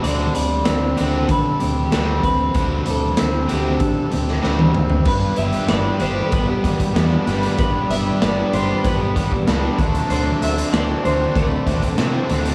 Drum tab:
CC |----------------|----------------|x---------------|----------------|
HH |x-x-x-x-x-x-x-x-|x-x-x-x-x-x-----|--xxx-x-x-xxx-xx|x-x-x-x-x-x-x-xx|
SD |----o-------o---|----o------oo---|----o-------o-o-|----o-------o---|
T1 |----------------|-------------o--|----------------|----------------|
T2 |----------------|--------------o-|----------------|----------------|
FT |----------------|---------------o|----------------|----------------|
BD |--------o-----o-|o-------o-------|o-------o-oo----|o-------o-oo--o-|

CC |----------------|
HH |x-xxx-x-x-xxx-xx|
SD |----o-------o---|
T1 |----------------|
T2 |----------------|
FT |----------------|
BD |--------o-oo----|